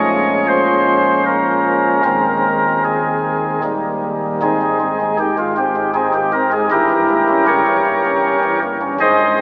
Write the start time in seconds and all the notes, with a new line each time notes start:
Already playing: A#1 A#2 F3 G#3 C#4 C#5
0.48 C5
1.26 A#4
2.05 D#1 D#2 D#3 G#3 C4 A#4
2.85 G#4
3.64 D#1 D#2 D#3 G3 A#3
4.42 G#1 G#2 C4 D#4 G#4
4.62 G#3
4.81 C4
5.01 G#3
5.19 D#3 G4
5.38 G#3 F4
5.57 C4 G4
5.76 G#3
5.95 C4 D#4 G#4
6.14 D#3 G4
6.33 C4 A#4
6.52 G#3 G#4
6.71 G1 G2 E4 G4 A#4
6.90 E3
7.09 A#3
7.28 C#4
7.47 C#3 G4 A#4 C#5
7.67 E3
7.86 A#3
8.05 C#4
8.44 E3
8.63 A#3
8.81 C#4
9.00 G#1 G#2 G#4 C5 D#5
9.20 G#3